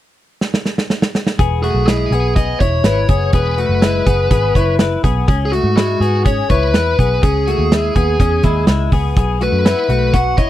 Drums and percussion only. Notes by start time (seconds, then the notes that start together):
0.41 snare
0.54 snare
0.65 snare
0.78 snare
0.90 snare
1.02 snare
1.15 snare
1.27 snare
1.39 kick, closed hi-hat
1.64 closed hi-hat
1.88 snare, closed hi-hat
2.13 closed hi-hat
2.36 kick, closed hi-hat
2.60 kick, closed hi-hat
2.84 snare, closed hi-hat
3.09 kick, closed hi-hat
3.33 kick, closed hi-hat
3.58 closed hi-hat
3.82 snare, closed hi-hat
4.07 kick, closed hi-hat
4.31 kick, closed hi-hat
4.55 kick, closed hi-hat
4.79 snare, closed hi-hat
5.04 kick, closed hi-hat
5.28 kick, closed hi-hat
5.53 closed hi-hat
5.77 snare, closed hi-hat
6.02 closed hi-hat
6.26 kick, closed hi-hat
6.50 kick, closed hi-hat
6.74 snare, closed hi-hat
6.99 kick, closed hi-hat
7.23 kick, closed hi-hat
7.48 closed hi-hat
7.72 snare, closed hi-hat
7.96 kick, closed hi-hat
8.20 kick, closed hi-hat
8.43 kick, closed hi-hat
8.67 snare, closed hi-hat
8.92 kick, open hi-hat
9.16 kick, closed hi-hat
9.41 closed hi-hat
9.66 snare, closed hi-hat
9.90 closed hi-hat
10.14 kick, closed hi-hat
10.38 kick, closed hi-hat